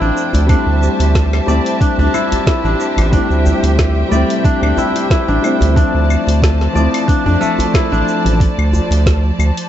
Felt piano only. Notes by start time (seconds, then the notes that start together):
Already playing: F3 A3 C4 E5
0.47 G3 A3 C4
0.51 E4
1.46 G3 A3 C4 E4
3.11 G3 A3 C4
3.15 E4
4.09 G3 A3 C4
4.13 E4
5.42 G3 A3 C4 E4
5.74 F3 A3 C4
5.78 E4
6.73 F3 A3 C4
6.77 E4